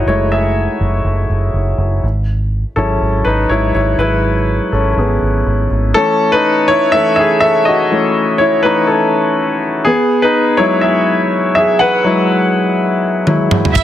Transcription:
Already playing: grand piano G#3 A3 D#4 E4 F#4 G#4 A4 B4 C#5 D#5 E5 F#5
0.06 fingered electric bass F#1, grand piano G#3 A3 E4 C#5
0.32 grand piano G#4 E5
0.80 fingered electric bass F#1
1.04 fingered electric bass F#1
1.29 fingered electric bass F#1
1.54 fingered electric bass F#1
1.78 fingered electric bass F#1
2.03 fingered electric bass G#1
2.76 fingered electric bass G#1, grand piano F#3 C#4 E4 G#4 A4
3.01 fingered electric bass G#1
3.25 fingered electric bass G#1, grand piano D#4 B4
3.49 fingered electric bass G#1, grand piano F#3 G#3 E4 C#5
3.74 fingered electric bass G#1, grand piano E4 C#5
3.98 fingered electric bass G#1, grand piano F#3 G#3 E4 B4
4.72 fingered electric bass G#1, grand piano C#4 A4
4.91 grand piano A4
4.97 fingered electric bass G#1, grand piano B3 G#4
5.22 fingered electric bass G#1
5.46 fingered electric bass G#1
5.71 fingered electric bass G#1
5.94 grand piano E3 A3 C#4 A4
6.32 grand piano D#4 B4
6.68 grand piano E4 C#5
6.92 grand piano E3 A3 C#4 A4 E5
7.16 grand piano G#4 E5
7.40 grand piano A4 E5
7.65 grand piano F#4 D#5
7.91 grand piano E3 A3 C#4
8.38 grand piano E4 C#5
8.63 grand piano E3 A3 C#4 D#4 B4
8.87 grand piano C#4 A4
9.85 grand piano B3 G#4
10.22 grand piano D#4 B4
10.57 grand piano F#3 G#3 E4 C#5
10.81 grand piano G#4 E5
11.55 grand piano G#4 E5
11.79 grand piano B4 F#5
12.04 grand piano F#3 G#3 E4
13.27 grand piano F#3 G#3 E4, high tom
13.51 mid tom
13.65 floor tom
13.75 fingered electric bass F#1, violin section E4 E5, kick, ride, shaker

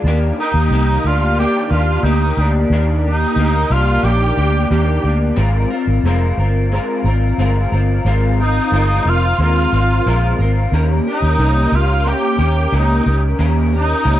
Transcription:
0.04 fingered electric bass D#2, clean electric guitar D#3 A#3
0.08 clean electric guitar D4 G4
0.40 clean electric guitar A#3 G4, cor anglais D#4
0.54 fingered electric bass D#2
0.70 fingered electric bass C2, clean electric guitar D#3 A#3
0.75 clean electric guitar G4
1.04 fingered electric bass D2, clean electric guitar D4 G4, cor anglais F4
1.09 clean electric guitar A#3
1.38 clean electric guitar D#3 A#3 D4 G4, cor anglais G4
1.64 cor anglais G4
1.70 fingered electric bass D#2, clean electric guitar D4 G4, cor anglais F4
1.74 clean electric guitar A#3
2.03 fingered electric bass D2, clean electric guitar A#3 G4, cor anglais D#4
2.37 fingered electric bass D2, clean electric guitar A#3 D4 G4
2.70 fingered electric bass D#2, clean electric guitar D#3 A#3 D4
2.74 clean electric guitar G4
3.05 clean electric guitar A#3 G4, cor anglais D#4
3.36 fingered electric bass D2, clean electric guitar A#3
3.41 clean electric guitar G4
3.70 fingered electric bass C2, clean electric guitar A#3 D4 G4, cor anglais F4
4.03 fingered electric bass A#1, clean electric guitar D#3 A#3 D4 G4, cor anglais G4
4.37 fingered electric bass D2, clean electric guitar A#3 D4 G4
4.70 fingered electric bass D#2, clean electric guitar D#3 A#3 D4 G4, cor anglais G4
5.04 fingered electric bass D2, clean electric guitar A#3 D4 G4
5.36 fingered electric bass G#1, clean electric guitar G#3 C4 F4 A#4
5.70 clean electric guitar C4 F4 A#4
5.87 fingered electric bass G#1
6.03 fingered electric bass F1, clean electric guitar G#3 C4 F4 A#4
6.37 fingered electric bass G1, clean electric guitar C4 F4 A#4
6.72 clean electric guitar G#3 C4 F4 A#4
7.04 fingered electric bass G#1, clean electric guitar C4 F4 A#4
7.38 fingered electric bass G1, clean electric guitar G#3 C4 F4 A#4
7.72 fingered electric bass G1, clean electric guitar C4 F4 A#4
8.05 fingered electric bass G#1, clean electric guitar G#3 C4 F4 A#4
8.39 clean electric guitar C4 F4 A#4, cor anglais D#4
8.72 fingered electric bass G1, clean electric guitar G#3 C4 F4 A#4
9.05 fingered electric bass F1, clean electric guitar C4 F4 A#4, cor anglais F4
9.38 fingered electric bass D#2, clean electric guitar G#3 C4 F4 A#4, cor anglais F4
9.73 fingered electric bass G#1, clean electric guitar C4 F4 A#4
10.06 fingered electric bass A#1, clean electric guitar G#3 C4 F4 A#4
10.39 fingered electric bass G#1, clean electric guitar C4 F4 A#4
10.72 fingered electric bass D#2, clean electric guitar D#3 A#3 C#4 G4 A#4
11.07 clean electric guitar C#4 G4 A#4, cor anglais D#4
11.22 fingered electric bass D#2
11.38 fingered electric bass C2, clean electric guitar D#3 A#3 C#4 G4 A#4
11.72 fingered electric bass C#2, clean electric guitar C#4 G4 A#4, cor anglais F4
12.05 clean electric guitar A#3 C#4 G4 A#4, cor anglais G4
12.38 fingered electric bass D#2, clean electric guitar C#4 G4 A#4
12.72 fingered electric bass C#2, clean electric guitar D#3 A#3 C#4 G4 A#4, cor anglais D#4
13.05 fingered electric bass C#2, clean electric guitar C#4 G4 A#4
13.39 fingered electric bass D#2, clean electric guitar D#3 A#3 C#4 G4 A#4
13.72 clean electric guitar C#4 G4 A#4, cor anglais D#4
14.04 fingered electric bass C#2, clean electric guitar D#3 A#3 C#4 G4 A#4

